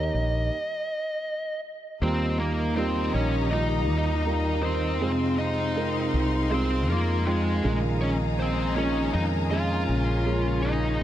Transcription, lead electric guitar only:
Already playing: D#5
2.03 C4 C5
2.40 A#3 A#4
2.76 C4 C5
3.14 C#4 C#5
3.51 D#4 D#5
4.63 C4 C5
5.38 D#4 D#5
6.52 C4 C5
6.90 A#3 A#4
7.25 G#3 G#4
8.01 C#4 C#5
8.39 C4 C5
8.76 C#4 C#5
9.13 D#4 D#5
9.51 F4 F5
10.62 D#4 D#5

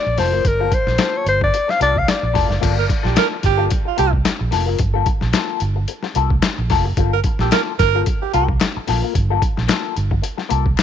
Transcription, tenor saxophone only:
2.79 A#4
3.05 G4
3.18 A#4
3.45 G4
3.87 F4
3.99 G4
7.13 A#4
7.41 G4
7.52 A#4
7.79 A#4
8.22 G4
8.34 F4

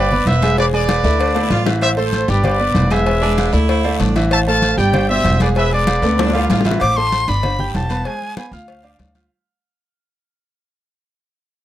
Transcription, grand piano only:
0.12 B3 B4 D5
0.43 G#3 G#4 G#5
0.58 G#3 G#4 G#5
0.73 G#3 G#4 G#5
1.04 A3 A4 D5
1.35 A3 A4 D5
1.66 E3 E4 E5
1.97 A3 A4 C5
2.28 G3 G4 G5
2.60 B3 B4 D5
2.91 G#3 G#4 G#5
3.06 G#3 G#4 G#5
3.22 G#3 G#4 G#5
3.53 A3 A4 D5
3.85 A3 A4 D5
4.16 E3 E4 E5
4.47 A3 A4 C5
4.78 G3 G4 G5
5.10 B2 G4 D5
5.41 G#3 G#4 G#5
5.56 G#3 G#4 G#5
5.72 G#3 G#4 G#5
6.04 A3 A4 D5
6.35 A3 A4 D5
6.65 E3 E4 E5
6.97 A3 A4 A5
7.28 D4 D5 D6
7.59 G4 G5 G6
7.90 B3 B4 B5
8.06 G#3 G#4 G#5
8.37 B3 B4 B5
8.53 F4 F5 F6
8.84 D4 D5 D6
9.15 F4 F5 F6

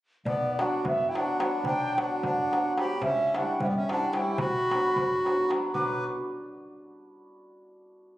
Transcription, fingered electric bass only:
0.25 B1
0.85 F#2
1.64 B1
2.23 F#2
3.01 C#2
3.60 G2
4.38 B1
4.96 F#2
5.74 B1

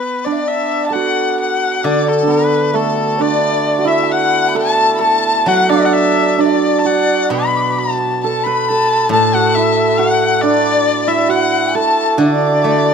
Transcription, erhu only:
Already playing: B4
0.25 D5
0.48 E5
0.86 A5
0.93 F#5
1.40 F#5
1.84 D5
2.09 A4
2.31 B4
2.75 A4
3.21 D5
3.87 E5
4.12 F#5
4.56 A5
5.01 A5
5.48 F#5
5.69 D5
5.85 F#5
5.93 E5
6.40 D5
6.79 A5
6.86 F#5
7.31 B5
7.79 A5
8.24 A5
8.44 B5
8.61 B5
8.69 A5
9.13 A5
9.34 F#5
9.55 E5
9.98 F#5
10.41 D5
11.08 E5
11.30 F#5
11.75 A5
12.20 D5

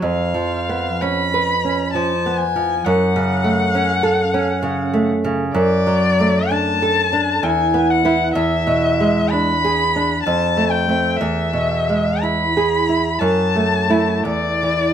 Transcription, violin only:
0.04 F5
1.01 B5
1.93 A5
2.38 G#5
2.84 F#5
5.55 D5
6.51 A5
7.43 G#5
7.90 F#5
8.34 E5
9.31 B5
10.23 A5
10.71 G5
11.17 E5
12.21 B5
13.19 A5
14.24 D5

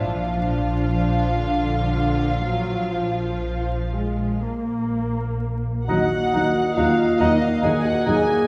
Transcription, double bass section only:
Already playing: A#1
1.44 A#1
2.96 A#1
4.44 A#1
5.89 D#2
6.34 D#2
6.78 D#2
7.21 D#2
7.63 D#2
8.07 D#2

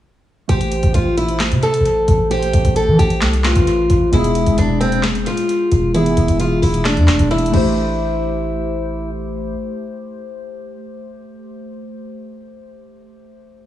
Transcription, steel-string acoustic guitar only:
0.49 G4
0.94 F4
1.17 E4
1.63 A4
2.31 G4
2.76 A4
2.99 G4
3.45 F4
4.13 E4
4.58 D4
4.81 C4
5.27 F4
5.95 E4
6.40 F4
6.62 E4
6.85 D4
7.31 E4
7.54 E4

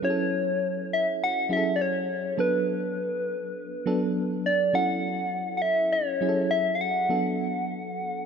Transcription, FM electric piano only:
0.02 F#3 C#4 E4 G#4
0.10 A4
1.49 F#3 C#4 E4 G#4
1.57 A4
2.37 F#3 B3 D4 A4
3.86 F#3 B3 D4 A4
4.73 F#3 C#4 E4 A4
6.21 F#3 C#4 E4 G#4
6.29 A4
7.09 F#3 B3 D4 A4

